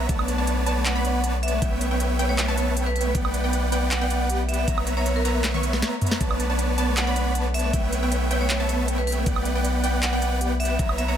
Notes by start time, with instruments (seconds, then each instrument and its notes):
Already playing: harp A#3 E4 A#4 C#5
0.00 harp C#4
0.09 808-style bass B1, harp A3, supersaw synth B3 B4 C#5 D5 A5, synth pluck A5, kick, closed hi-hat
0.19 harp D4, high woodblock
0.28 harp A3, closed hi-hat
0.38 supersaw synth B3 B4 C#5 D5 A5, harp D4, synth pluck A5
0.47 harp B4, closed hi-hat
0.57 harp A4
0.66 supersaw synth B3 B4 C#5 D5 A5, harp D4, synth pluck A5, closed hi-hat
0.76 harp A3
0.85 harp A3, vibraphone F#5, clap, closed hi-hat
0.95 supersaw synth B3 B4 C#5 D5 B5, harp D4, synth pluck B5
1.05 harp A3, closed hi-hat
1.24 supersaw synth B3 B4 C#5 D5 A5, harp B4, synth pluck A5, closed hi-hat
1.34 harp A4
1.43 harp D4, vibraphone E5, closed hi-hat
1.48 closed hi-hat
1.53 harp A3, vibraphone E5
1.62 808-style bass B1, harp A3, supersaw synth B3 B4 E5 G5, synth pluck G5, kick, closed hi-hat
1.72 harp C#4
1.81 harp A3, closed hi-hat
1.91 supersaw synth B3 B4 C#5 E5 G5, harp C#4, synth pluck G5
2.00 harp A4, closed hi-hat
2.10 harp G4
2.19 supersaw synth B3 B4 C#5 E5 G5, harp C#4, synth pluck G5, closed hi-hat
2.29 harp A3, vibraphone C#5
2.38 harp A3, clap, closed hi-hat
2.48 supersaw synth B3 B4 C#5 E5 A5, harp C#4, vibraphone C#5, synth pluck A5
2.57 harp A3, vibraphone C#5, closed hi-hat
2.67 harp C#4
2.77 supersaw synth B3 B4 C#5 E5 G5, harp A4, synth pluck G5, closed hi-hat
2.86 harp G4, vibraphone B4
2.96 harp C#4, vibraphone B4, closed hi-hat
3.01 closed hi-hat
3.06 harp A3
3.15 808-style bass B1, harp B3, supersaw synth B3 B4 D5 F#5 G5, synth pluck G5, kick, closed hi-hat
3.25 harp E4, high woodblock
3.34 harp B3, closed hi-hat
3.44 supersaw synth B3 B4 D5 F#5 G5, harp E4, synth pluck G5
3.53 harp D5, closed hi-hat
3.63 harp B4
3.72 supersaw synth B3 B4 D5 F#5 G5, harp E4, synth pluck G5, closed hi-hat
3.82 harp B3
3.91 harp B3, vibraphone F#5, clap, closed hi-hat
4.01 supersaw synth B3 B4 D5 F#5 G5, harp E4, synth pluck G5
4.10 harp B3, closed hi-hat
4.20 harp E4
4.29 supersaw synth B3 B4 D5 F#5 G5, synth pluck G4, harp D5, closed hi-hat
4.39 harp B4
4.49 harp E4, vibraphone E5, closed hi-hat
4.54 closed hi-hat
4.59 harp B3, vibraphone E5
4.68 808-style bass B1, harp A#3, supersaw synth B3 B4 C#5 E5 A#5, synth pluck A#5, kick, closed hi-hat
4.78 harp E4, high woodblock
4.87 harp A#3, vibraphone E5, closed hi-hat
4.97 supersaw synth B3 B4 C#5 E5 A#5, harp E4, vibraphone C#5, synth pluck A#5
5.06 harp C#5, vibraphone C#5, closed hi-hat
5.16 harp A#4, vibraphone A#4
5.25 supersaw synth B3 B4 C#5 E5 A#5, harp E4, vibraphone A#4, synth pluck A#5, closed hi-hat
5.35 harp A#3
5.44 harp A#3, snare, clap, closed hi-hat
5.54 supersaw synth B3 B4 C#5 E5 C#6, harp E4, synth pluck C#6, high tom
5.63 harp A#3, closed hi-hat
5.73 harp E4, snare
5.82 supersaw synth B3 B4 C#5 E5 A#5, harp C#5, synth pluck A#5, snare, closed hi-hat
5.92 harp A#4
6.01 harp E4, closed hi-hat, mid tom
6.06 closed hi-hat
6.11 harp A#3, snare
6.21 808-style bass B1, harp A3, supersaw synth B3 B4 C#5 D5 A5, synth pluck A5, kick, closed hi-hat
6.31 harp D4, high woodblock
6.40 harp A3, closed hi-hat
6.50 supersaw synth B3 B4 C#5 D5 A5, harp D4, synth pluck A5
6.59 harp B4, closed hi-hat
6.69 harp A4
6.78 supersaw synth B3 B4 C#5 D5 A5, synth pluck A5, closed hi-hat
6.88 harp A3
6.97 harp A3, vibraphone F#5, clap, closed hi-hat
7.07 supersaw synth B3 B4 C#5 D5 B5, harp D4, synth pluck B5
7.16 harp A3, closed hi-hat
7.26 harp D4
7.35 supersaw synth B3 B4 C#5 D5 A5, harp B4, synth pluck A5, closed hi-hat
7.45 harp A4
7.54 harp D4, vibraphone E5, open hi-hat
7.59 closed hi-hat
7.64 harp A3, vibraphone E5
7.73 808-style bass B1, harp A3, supersaw synth B3 B4 E5 G5, synth pluck G5, kick, closed hi-hat
7.83 harp C#4
7.92 harp A3, closed hi-hat
8.03 supersaw synth B3 B4 C#5 E5 G5, harp C#4, synth pluck G5
8.12 harp A4, closed hi-hat
8.22 harp G4
8.31 supersaw synth B3 B4 C#5 E5 G5, harp C#4, synth pluck G5, closed hi-hat
8.41 harp A3, vibraphone C#5
8.50 harp A3, clap, closed hi-hat
8.60 supersaw synth B3 B4 C#5 E5 A5, harp C#4, vibraphone C#5, synth pluck A5
8.69 harp A3, vibraphone C#5, closed hi-hat
8.79 harp C#4
8.88 supersaw synth B3 B4 C#5 E5 G5, harp A4, synth pluck G5, closed hi-hat
8.98 harp G4, vibraphone B4
9.07 harp C#4, vibraphone B4, open hi-hat
9.12 closed hi-hat
9.17 harp A3
9.26 808-style bass B1, harp B3, supersaw synth B3 B4 D5 F#5 G5, synth pluck G5, kick, closed hi-hat
9.36 harp E4, high woodblock
9.45 harp B3, closed hi-hat
9.55 supersaw synth B3 B4 D5 F#5 G5, harp E4, synth pluck G5
9.65 harp D5, closed hi-hat
9.75 harp B4
9.84 supersaw synth B3 B4 D5 F#5 G5, harp E4, synth pluck G5, closed hi-hat
9.94 harp B3
10.03 harp B3, vibraphone F#5, clap, closed hi-hat
10.13 supersaw synth B3 B4 D5 F#5 G5, harp E4, synth pluck G5
10.22 harp B3, closed hi-hat
10.32 harp E4
10.41 supersaw synth B3 B4 D5 F#5 G5, synth pluck G4, harp D5, closed hi-hat
10.51 harp B4
10.60 harp E4, vibraphone E5, open hi-hat
10.65 closed hi-hat
10.70 harp B3, vibraphone E5
10.79 808-style bass B1, harp A#3, supersaw synth B3 B4 C#5 E5 A#5, synth pluck A#5, kick, closed hi-hat
10.89 harp E4, high woodblock
10.98 harp A#3, vibraphone E5, closed hi-hat
11.08 supersaw synth B3 B4 C#5 E5 A#5, harp E4, vibraphone C#5, synth pluck A#5